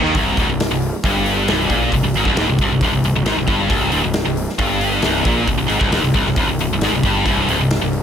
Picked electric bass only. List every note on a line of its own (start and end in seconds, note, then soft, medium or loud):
0.03 0.14 D#2 medium
0.14 0.35 C1 medium
0.37 0.46 D1 medium
0.47 0.68 C1 medium
0.70 0.91 C1 medium
1.03 1.45 G1 medium
1.48 1.68 C1 loud
1.69 1.90 A#1 medium
1.92 2.02 C1 medium
2.03 2.13 C1 medium
2.13 2.24 G#1 loud
2.25 2.35 C1 loud
2.35 2.46 D#1 medium
2.47 2.58 C1 medium
2.58 2.69 C1 medium
2.69 2.80 C1 medium
2.81 2.89 D1 medium
2.89 3.00 C1 medium
3.00 3.12 C1 medium
3.13 3.23 C1 medium
3.24 3.34 G#1 loud
3.35 3.46 C1 medium
3.47 3.68 G1 medium
3.70 3.91 C1 medium
3.91 4.02 D1 medium
4.04 4.24 C1 medium
4.25 4.46 C1 medium
4.58 5.00 G1 medium
5.03 5.24 C1 loud
5.25 5.46 A#1 loud
5.47 5.57 C1 medium
5.58 5.68 C1 medium
5.69 5.80 G#1 medium
5.81 5.90 C1 loud
5.91 6.01 D#1 medium
6.01 6.13 C1 medium
6.14 6.24 C1 medium
6.24 6.35 C1 medium
6.36 6.45 D1 medium
6.46 6.57 C1 medium
6.58 6.68 C1 medium
6.68 6.79 C1 medium
6.79 6.90 G#1 loud
6.90 7.02 C1 medium
7.03 7.24 G1 medium
7.26 7.46 C1 loud
7.46 7.57 D1 medium
7.57 7.79 C1 medium
7.81 8.02 C1 medium